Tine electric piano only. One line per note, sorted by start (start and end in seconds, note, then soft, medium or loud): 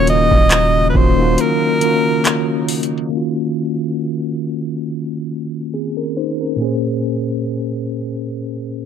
0.00 0.71 D#3 loud
0.00 0.71 A#3 medium
0.00 0.71 C#4 loud
0.00 0.72 F4 loud
0.00 0.72 F#4 loud
0.94 1.13 D#3 medium
0.94 1.14 A#3 medium
0.94 1.14 C#4 medium
0.94 1.15 F4 medium
0.98 1.15 F#4 medium
1.17 1.70 D#3 medium
1.17 1.70 A#3 medium
1.17 1.71 C#4 medium
1.17 1.71 F4 medium
1.17 1.72 F#4 medium
1.80 2.88 D#3 medium
1.80 2.88 A#3 medium
1.80 2.89 C#4 medium
1.80 2.89 F4 medium
1.85 2.90 F#4 medium
3.09 6.54 D#3 medium
3.09 6.55 A#3 medium
3.13 5.70 C#4 medium
3.13 5.70 F4 medium
3.17 5.72 F#4 medium
5.74 5.96 C4 soft
5.74 5.96 G#4 medium
5.97 6.16 C#4 medium
5.97 6.16 A#4 medium
6.17 6.39 D#4 medium
6.17 6.39 C5 medium
6.41 6.59 C#4 soft
6.41 6.82 A#4 medium
6.56 8.85 A#2 medium
6.56 8.85 A#3 medium
6.60 8.85 C#4 medium
6.60 8.85 G#4 medium
6.64 8.85 C5 medium